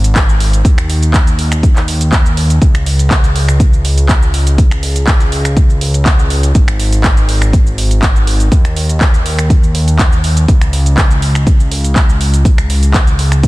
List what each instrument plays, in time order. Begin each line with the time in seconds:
Already playing: analog synth bass G#1
0.04 closed hi-hat, shaker
0.16 kick, clap, closed hi-hat, shaker
0.29 shaker
0.40 open hi-hat
0.53 closed hi-hat, shaker
0.65 analog synth bass D#2, kick, closed hi-hat, shaker
0.78 finger snap, closed hi-hat, shaker
0.90 open hi-hat
1.03 closed hi-hat, shaker
1.14 kick, clap, closed hi-hat, shaker
1.27 closed hi-hat, shaker
1.39 open hi-hat
1.52 finger snap, closed hi-hat, shaker
1.63 kick, closed hi-hat, shaker
1.76 clap, shaker
1.88 open hi-hat
2.01 closed hi-hat, shaker
2.12 kick, clap, closed hi-hat, shaker
2.26 shaker
2.37 open hi-hat
2.50 closed hi-hat, shaker
2.62 analog synth bass C#2, kick, closed hi-hat, shaker
2.75 finger snap, closed hi-hat, shaker
2.86 open hi-hat
2.99 closed hi-hat, shaker
3.11 kick, clap, closed hi-hat, shaker
3.24 closed hi-hat, shaker
3.36 open hi-hat
3.48 finger snap, closed hi-hat, shaker
3.60 kick, closed hi-hat, shaker
3.73 shaker
3.85 open hi-hat
3.98 closed hi-hat, shaker
4.09 kick, clap, closed hi-hat, shaker
4.23 shaker
4.34 open hi-hat
4.47 closed hi-hat, shaker
4.58 kick, closed hi-hat, shaker
4.71 finger snap, closed hi-hat, shaker
4.83 open hi-hat
4.96 closed hi-hat, shaker
5.07 kick, clap, closed hi-hat, shaker
5.20 closed hi-hat, shaker
5.32 open hi-hat
5.45 finger snap, closed hi-hat, shaker
5.57 kick, closed hi-hat, shaker
5.70 shaker
5.81 open hi-hat
5.94 closed hi-hat, shaker
6.06 kick, clap, closed hi-hat, shaker
6.19 shaker
6.30 open hi-hat
6.43 closed hi-hat, shaker
6.55 analog synth bass G#1, kick, closed hi-hat, shaker
6.68 finger snap, closed hi-hat, shaker
6.80 open hi-hat
6.93 closed hi-hat, shaker
7.04 kick, clap, closed hi-hat, shaker
7.17 closed hi-hat, shaker
7.29 open hi-hat
7.42 finger snap, closed hi-hat, shaker
7.53 kick, closed hi-hat, shaker
7.67 shaker
7.78 open hi-hat
7.91 closed hi-hat, shaker
8.02 kick, clap, closed hi-hat, shaker
8.16 shaker
8.27 open hi-hat
8.40 closed hi-hat, shaker
8.52 analog synth bass D#2, kick, closed hi-hat, shaker
8.65 finger snap, closed hi-hat, shaker
8.76 open hi-hat
8.89 closed hi-hat, shaker
9.01 kick, clap, closed hi-hat, shaker
9.14 closed hi-hat, shaker
9.26 open hi-hat
9.39 finger snap, closed hi-hat, shaker
9.50 kick, closed hi-hat, shaker
9.64 shaker
9.75 open hi-hat
9.88 closed hi-hat, shaker
9.99 kick, clap, closed hi-hat, shaker
10.13 shaker
10.24 open hi-hat
10.37 closed hi-hat, shaker
10.48 analog synth bass C#2, kick, closed hi-hat, shaker
10.61 finger snap, closed hi-hat, shaker
10.73 open hi-hat
10.86 closed hi-hat, shaker
10.98 kick, clap, closed hi-hat, shaker
11.11 closed hi-hat, shaker
11.22 open hi-hat
11.35 finger snap, closed hi-hat, shaker
11.47 kick, closed hi-hat, shaker
11.60 shaker
11.72 open hi-hat
11.84 closed hi-hat, shaker
11.96 kick, clap, closed hi-hat, shaker
12.09 shaker
12.21 open hi-hat
12.34 closed hi-hat, shaker
12.45 kick, closed hi-hat, shaker
12.58 finger snap, closed hi-hat, shaker
12.70 open hi-hat
12.83 closed hi-hat, shaker
12.94 kick, clap, closed hi-hat, shaker
13.07 closed hi-hat, shaker
13.19 open hi-hat
13.32 finger snap, closed hi-hat, shaker
13.44 kick, closed hi-hat, shaker